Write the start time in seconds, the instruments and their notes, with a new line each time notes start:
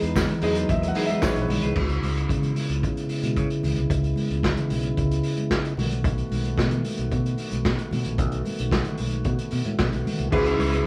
Already playing: tonewheel organ E3 G#3 B3 D#4
0.02 fingered electric bass E2, clean electric guitar D#4 G#4 B4, closed hi-hat
0.16 muted clean electric guitar stroke, kick, snare, clap, tambourine, muted conga, high conga
0.29 muted clean electric guitar stroke, closed hi-hat, low conga
0.42 fingered electric bass E2, grand piano F#3 G#3 D#4 D#5, clean electric guitar D#4 G#4 B4, open hi-hat, muted conga
0.55 clean electric guitar D#4 G#4 B4, closed hi-hat
0.69 fingered electric bass D#2, grand piano E5, muted clean electric guitar stroke, kick, closed hi-hat
0.82 muted clean electric guitar stroke, closed hi-hat
0.88 grand piano F#5
0.95 clean electric guitar D#4 G#4 B4, open hi-hat, muted conga
1.06 clean electric guitar G#4 B4, grand piano E5, closed hi-hat, high conga
1.10 clean electric guitar D#4
1.22 clean electric guitar D#4 G#4 B4, grand piano C#5, kick, snare, clap, tambourine
1.36 fingered electric bass A#1, muted clean electric guitar stroke, closed hi-hat
1.41 grand piano B4
1.49 fingered electric bass B1, muted clean electric guitar stroke, open hi-hat, muted conga, high conga, low conga
1.62 fingered electric bass C2, clean electric guitar D#4 G#4 B4, closed hi-hat
1.76 fingered electric bass C#2, tonewheel organ C#3 G#3 B3 E4, kick, crash
1.89 closed hi-hat
2.02 fingered electric bass C#2, open hi-hat, high conga
2.17 closed hi-hat
2.29 fingered electric bass C#3, kick, closed hi-hat, muted conga, high conga
2.42 closed hi-hat, low conga
2.56 open hi-hat, high conga
2.69 fingered electric bass C#2, closed hi-hat
2.83 fingered electric bass C#3, kick, closed hi-hat
2.97 closed hi-hat
3.09 open hi-hat, muted conga
3.23 fingered electric bass B2, closed hi-hat, high conga
3.36 fingered electric bass C#3, kick, closed hi-hat
3.50 closed hi-hat
3.63 fingered electric bass C#2, open hi-hat, high conga, low conga
3.76 fingered electric bass C2, closed hi-hat
3.90 fingered electric bass C#2, kick, closed hi-hat
4.04 closed hi-hat
4.16 open hi-hat, muted conga, high conga
4.30 fingered electric bass C#2, closed hi-hat
4.43 kick, snare, clap, muted conga, high conga
4.56 closed hi-hat, low conga
4.70 fingered electric bass B1, open hi-hat, muted conga, high conga
4.83 closed hi-hat
4.97 fingered electric bass C#2, kick, closed hi-hat, muted conga
5.11 closed hi-hat
5.23 open hi-hat
5.37 closed hi-hat, high conga
5.51 kick, snare, clap
5.65 closed hi-hat
5.77 fingered electric bass B1, tonewheel organ D#3 A3 F#4, open hi-hat, muted conga, high conga, low conga
5.91 closed hi-hat
6.04 kick, closed hi-hat, muted conga
6.18 closed hi-hat
6.30 fingered electric bass B1, open hi-hat, high conga
6.45 closed hi-hat
6.57 fingered electric bass B2, kick, snare, clap, muted conga, high conga
6.70 closed hi-hat, low conga
6.84 open hi-hat, muted conga, high conga
6.98 fingered electric bass B1, closed hi-hat
7.10 fingered electric bass B2, kick, closed hi-hat, muted conga
7.26 closed hi-hat
7.37 open hi-hat, muted conga
7.51 fingered electric bass B1, closed hi-hat, high conga
7.65 fingered electric bass B2, kick, snare, clap
7.79 closed hi-hat
7.91 fingered electric bass B2, open hi-hat, muted conga, high conga, low conga
8.05 fingered electric bass A#1, closed hi-hat
8.18 fingered electric bass B1, kick, closed hi-hat
8.32 closed hi-hat
8.45 open hi-hat, muted conga, high conga
8.59 fingered electric bass B1, closed hi-hat
8.71 kick, snare, clap, muted conga, high conga
8.85 closed hi-hat, low conga
8.98 fingered electric bass B1, open hi-hat, muted conga, high conga
9.11 closed hi-hat
9.25 fingered electric bass B2, kick, closed hi-hat
9.39 closed hi-hat
9.51 fingered electric bass B2, open hi-hat
9.65 fingered electric bass A2, closed hi-hat, high conga
9.79 fingered electric bass B2, kick, snare, clap
9.92 fingered electric bass B1, closed hi-hat
10.05 open hi-hat, high conga, low conga
10.19 fingered electric bass C2, closed hi-hat
10.31 fingered electric bass C#2, tonewheel organ C#3 G#3 B3 E4, grand piano G#3 B3 C#4 E4 B4, clean electric guitar E4 G#4 B4, kick, crash, muted conga
10.45 muted clean electric guitar stroke, closed hi-hat
10.58 fingered electric bass C#2, clean electric guitar E4 G#4 B4, open hi-hat, high conga
10.72 clean electric guitar E4 G#4 B4, closed hi-hat